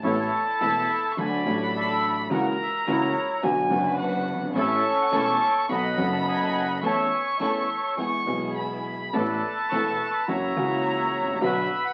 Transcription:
0.03 A1 A2 E3 A3 B3 E4 A4 C#5 A5
0.46 D5
0.60 E1 E2 E3 A3 B3 E4 A4 E5 B5
1.04 A5
1.12 C#6
1.17 D2 D3 F#3 A3 D4 F#4 A4 D5 G#5 B5
1.44 A1 A2 F#3 A3 D4 F#4 A4
1.62 F#5
1.76 A4 E5
2.19 D5
2.30 C#2 C#3 E3 A#3 C#4 E4 F#4 A#4 F#5 A#5
2.62 E5
2.86 C#2 C#3 E3 A#3 C#4 E4 F#4 A#4 C#5
3.43 B1 B2 D3 F#3 B3 D4 F#4 B4 G#5
3.68 F#1 F#2 D3 F#3 B3 D4 F#4 B4
3.99 F#5
4.35 F#1
4.42 G1
4.49 G#1
4.55 A1 A2 E3 A3 C#4 E4 A4 C#6
4.60 E5
5.02 F#5
5.12 E1 E2 E3 A3 C#4 E4 A4
5.16 A5 D6
5.59 C#6
5.69 B1 B2 F#3 B3 D#4 A4 D#5 F#5 B5
5.96 F#1 F#2 F#3 B3 D#4 A4
6.01 A4
6.13 A5
6.28 D#5 G#5
6.70 F#5
6.83 E2 E3 A3 C#4 E4 A4 C#5 E5 A5 C#6
7.14 G#5
7.40 E2 E3 A3 C#4 E4 A4 C#5 E5
7.97 E2 E3 G#3 B3 E4 G#4 C#6
8.24 B1 B2 E3 G#3 B3 E4 G#4
8.29 G#4
8.57 B5
9.13 A1 A2 E3 A3 B3 E4 A4 B4 D5 A5
9.55 E5
9.69 E1 E2 E3 A3 B3 E4 A4 C#6
10.11 B5 C#6
10.26 F#1 F#2 E3 F#3 A#3 C#4 E4 F#4 C#5 E5 A#5
10.54 C#2 C#3 E3 A#3 C#4 E4 F#4
10.58 F#4
11.20 G#1
11.27 A1
11.33 A#1
11.41 B1 B2 D3 F#3 B3 D4 F#4 B4 E5 B5
11.85 F#5

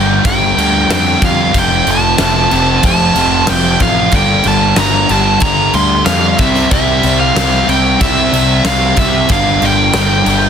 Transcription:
Already playing: G1 G2 D3 G3 A#3 D4 G5
0.22 G1 G2 D3 G3 G5, kick, crash
0.56 D2 G2 D3 G3, crash
0.89 F2 G2 D3 G3 G5, snare, crash
1.21 F2 G2 D3 G3, kick, crash
1.25 F5
1.53 F1 F2 C3 F3 A3 C4, kick, crash
1.59 G5
1.86 F1 F2 C3 F3, crash
1.91 A5
2.18 F1 F2 C3 F3, snare, crash
2.51 F1 F2 C3 F3 A3 C4, crash
2.56 F2 C3
2.82 F1 F2 C3 F3 A5, kick, crash
3.15 F1 F2 C3 F3, crash
3.47 F1 F2 C3 F3 G5, snare, crash
3.80 A1 F2 C3 F3 F5, kick, crash
4.12 G1 G2 D3 G3 A#3 D4, kick, crash
4.16 G5
4.44 G1 G2 D3 G3, crash
4.48 A5
4.76 G1 G2 D3 G3 A#5, snare, crash
5.09 G1 G2 D3 G3 A#3 D4 A5, crash
5.13 G2
5.40 G1 G2 D3 G3 A#5, kick, crash
5.73 D2 G2 D3 G3 C6, crash
6.05 F2 G2 D3 G3 F5, snare, crash
6.38 C2 C3 G3 C4 E5, kick, crash
6.43 E4
6.55 snare
6.71 C2 C3 G3 C4 E5, kick, crash
7.02 C2 C3 G3 C4, crash
7.20 F5
7.34 C2 C3 G3 C4, snare, crash
7.39 E4
7.67 C2 C3 G3 C4 G5, crash
7.99 C2 C3 G3 C4 E5, kick, crash
8.32 C2 C3 G3 C4, crash
8.64 C2 C3 G3 C4 F5, snare, crash
8.96 C2 C3 G3 C4 E5, kick, crash
9.00 C4
9.29 G1 G2 D3 G3 A#3 F5, kick, crash
9.33 D4
9.61 G1 G2 D3 G3, crash
9.66 G5
9.92 G1 G2 D3 G3, snare, crash
10.24 G1 G2 D3 G3 A#3 D4, crash
10.29 G2 D3 G3

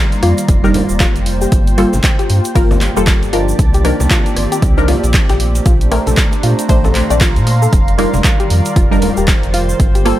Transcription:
Already playing: D#3 G3 A#3 D4 D#4 F4 A#4 C5 D5 F5 A#5 C6
0.12 closed hi-hat, shaker
0.23 F2 F4, cross-stick, closed hi-hat, open hi-hat
0.38 G5, closed hi-hat, shaker
0.48 F1, kick, closed hi-hat, shaker
0.64 G3 D4 D#4 G4 A#4, snare, shaker
0.74 closed hi-hat, open hi-hat, low conga
0.89 D#1, shaker
1.00 F4, kick, snare, clap, closed hi-hat, shaker
1.16 F1, closed hi-hat, shaker
1.26 closed hi-hat, open hi-hat
1.41 G4, shaker
1.52 G1 F4 G4, kick, closed hi-hat, shaker
1.67 closed hi-hat, shaker
1.77 G3 A#3 F4 A4, cross-stick, closed hi-hat, open hi-hat
1.93 G1, snare, high conga, shaker
2.04 kick, snare, clap, closed hi-hat, shaker
2.10 D5
2.19 G4, closed hi-hat, shaker
2.29 G2, closed hi-hat, open hi-hat
2.45 A5, closed hi-hat, shaker
2.55 G1 G3 A#3 F4 A#4, kick, closed hi-hat, open hi-hat, shaker
2.71 snare, low conga, shaker
2.81 clap, closed hi-hat, open hi-hat
2.96 F1 G3 A#3 F4 G4 A4, shaker
3.07 kick, snare, clap, closed hi-hat, shaker
3.23 G1, closed hi-hat, shaker
3.33 F3 D4 D#4 F4 A#4, snare, closed hi-hat, open hi-hat
3.49 shaker
3.59 C2 D#3 A#3 C4 F4 D5, kick, closed hi-hat, shaker
3.74 G4, closed hi-hat, shaker
3.84 F3 D4 D#4 A#4, cross-stick, closed hi-hat, open hi-hat
4.00 C2, snare, high conga, shaker
4.11 F4, kick, snare, clap, closed hi-hat, shaker
4.26 closed hi-hat, shaker
4.37 G1, cross-stick, closed hi-hat, open hi-hat
4.52 G4, closed hi-hat, shaker
4.62 C2, kick, closed hi-hat, shaker
4.77 F3 D4 D#4 A#4, snare, shaker
4.88 F4, snare, closed hi-hat, open hi-hat, low conga
5.04 A#1, closed hi-hat, shaker
5.14 kick, clap, closed hi-hat, shaker
5.29 A#1 G4, snare, closed hi-hat, shaker
5.40 A3 D4 C5 A#5, closed hi-hat, open hi-hat
5.55 closed hi-hat, shaker
5.66 A#1 F4, kick, closed hi-hat, shaker
5.81 closed hi-hat, shaker
5.91 A3 C4 D4 A#4, cross-stick, closed hi-hat, open hi-hat
6.06 A#1 A4 C6, snare, closed hi-hat, high conga, shaker
6.17 kick, snare, clap, closed hi-hat, shaker
6.32 closed hi-hat, shaker
6.43 A#2 F4 F5, closed hi-hat, open hi-hat
6.59 closed hi-hat, shaker
6.69 A#1 A3 C4 D4 C5, kick, closed hi-hat, open hi-hat, shaker
6.84 A4, snare, low conga, shaker
6.95 clap, closed hi-hat, open hi-hat
7.10 A#1 A3 C4 D4 D5, closed hi-hat, shaker
7.21 F4, kick, snare, clap, closed hi-hat, shaker
7.36 A#2, closed hi-hat, shaker
7.47 snare, closed hi-hat, open hi-hat
7.62 A4, shaker
7.72 F1 D#3 G3 F4 A#4 D5, kick, closed hi-hat, shaker
7.88 closed hi-hat, shaker
7.98 G3 D4 D#4 F4 A#4, cross-stick, closed hi-hat, open hi-hat
8.13 F1, snare, high conga, shaker
8.24 kick, snare, clap, closed hi-hat, shaker
8.40 G4, closed hi-hat, shaker
8.50 F2, closed hi-hat, open hi-hat
8.58 C5
8.65 G5, closed hi-hat, shaker
8.76 F1 F4, kick, closed hi-hat, shaker
8.91 G3 D4 D#4 A#4, snare, shaker
9.02 closed hi-hat, open hi-hat, low conga
9.17 D#1 G4, shaker
9.28 kick, snare, clap, closed hi-hat, shaker
9.43 F1, closed hi-hat, shaker
9.54 F4, closed hi-hat, open hi-hat
9.69 shaker
9.80 G1 A#3 F4 G4, kick, closed hi-hat, shaker
9.95 G4, closed hi-hat, shaker
10.05 G3 A#3 F4 A4, cross-stick, closed hi-hat, open hi-hat

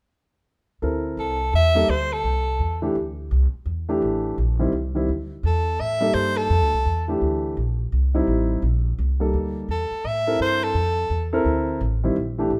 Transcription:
0.82 D2 C4 E4 A4 A#4
1.17 C2 A4
1.53 E2 E5
1.75 G3 A#3 D#4 A4
1.89 D2 C5
2.13 A4
2.24 C2
2.59 E2
2.82 E3 A3 D4 G4
2.95 D2
3.31 C2
3.53 muted upright bass stroke
3.66 E2
3.89 E3 A3 D4 G4
4.02 A1
4.38 A#1
4.59 D#3 G3 C4 E4
4.72 C2
4.95 D#3 G3 C4 E4
5.09 D2
5.43 E2 A4
5.80 A2 E5
6.00 G3 A#3 D#4 A4
6.14 G2 C5
6.37 A4
6.50 F2
6.62 D2
6.73 C2
6.85 E2
7.08 E3 A3 D4 G4
7.22 D2
7.57 A#1
7.92 C2
8.14 G3 C4 D#4 E4
8.27 A1
8.62 A#1
8.99 C2
9.20 G3 A#3 D#4 A4
9.33 D2
9.69 E2 A4
9.91 muted upright bass stroke
10.04 A2 E5
10.27 C4 E4 A4 A#4
10.40 G2 C5
10.64 A4
10.74 F2
11.10 E2
11.33 C4 E4 A4 A#4
11.45 D2
11.81 A1
12.04 D#3 G3 C4 E4
12.16 A#1
12.38 E3 A3 D4 G4
12.50 A1

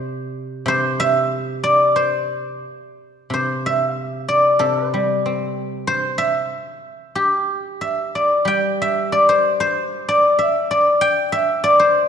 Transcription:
Already playing: C3 C5 D5 E5
0.66 C3 C5
1.00 E5
1.64 D5
1.96 C5
3.30 C3 C5
3.66 E5
4.28 D5
4.59 C3 A4
4.88 C5
4.94 G3
5.26 C4
5.87 C5
6.18 E5
7.15 G4
7.81 E5
8.15 D5
8.45 G3 G5
8.82 E5
9.12 D5
9.29 C5
9.60 C5
10.09 D5
10.39 E5
10.71 D5
11.01 G5
11.32 E5
11.64 D5
11.79 C5

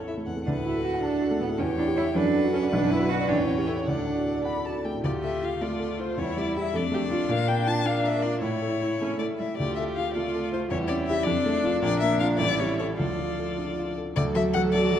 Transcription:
Already playing: A1 E2 E4 A4 C#5 E5 A5
0.00 A4
0.07 E4 E5
0.17 A3
0.26 E2 F#5
0.37 A3
0.46 D2 D4 A4 B4 F#5
0.56 A2
0.64 E4 F#4
0.75 A4
0.84 F#4
0.94 F#5
1.01 D4 A4 A5
1.13 A4
1.22 F#4
1.31 A3
1.41 A2 B3
1.50 A3
1.58 E2 C#4 G4 C#5 G5
1.68 E3
1.77 D4 E4
1.87 G4
1.96 E4 C#5
2.05 E5
2.15 F#2 D4 A4 B4 F#5
2.24 F#3
2.34 D4
2.44 F#4
2.52 C#4 A4
2.63 D5
2.71 B1 D4 B4
2.82 F#2
2.90 D4 E4
3.00 F#4
3.09 D4 F#4
3.19 D5
3.28 A1 D4 C#5 G5
3.38 E2
3.48 C#4
3.58 C#4 G4
3.67 E4 A4
3.77 C#5
3.85 D2 D4 A4 D5 F#5
3.97 A2
4.07 D4
4.16 F#4
4.26 A4
4.35 D5
4.44 F#5 B5
4.56 A4
4.65 F#4 A5
4.76 D4
4.85 A3 G5
4.95 A2
5.03 D2 A3 F4 G4 D5
5.23 A4 E5
5.42 F4 F5
5.61 A3 F4 D5
5.80 A4
5.99 F4 C5
6.18 E2 G3 E4 C#5
6.37 G3 D5
6.57 E4 G4 E5
6.73 F2 A3 D4 A4 D5
6.92 A3 G4
7.10 D4 F4
7.29 A#2 A#3 D4 F5
7.48 A#4 G5
7.67 F4 A5
7.86 A#3 D4 F5
8.04 A#4 E5
8.23 F4 D5
8.41 A2 A3 E4 C#5
8.62 A4
8.82 E4
8.99 A3 C#4
9.19 A3 A4 D5
9.38 G3 E4 E5
9.57 D2 A3 F4 G4 D5
9.75 A4 E5
9.95 F4 F5
10.14 A3 F4 D5
10.35 A4
10.53 F4 C5
10.70 E2 G3 E4 G4 C#5
10.88 C#4 D5
11.07 E4 G4 E5
11.24 F2 F3 D4 A4 D5
11.46 A3
11.64 D4 F4
11.81 A#1 F3 D4 A#4 D5
12.00 A#3 E5
12.20 D4 F4 F5
12.38 A1 G3 E4 A4 D5
12.60 G3 C#5
12.79 E4 A4 C#5
12.97 D2 F3 F4 A4 D5
13.19 F4
13.39 A4
13.58 D4
13.78 F4
13.98 A4
14.15 D2 F#3 A4 D5
14.34 F#3 F#4 A4 E5
14.54 F#3 F#4 A4 F#5
14.73 F#3 F#4 A4 D5
14.93 F#3 F#4 A4

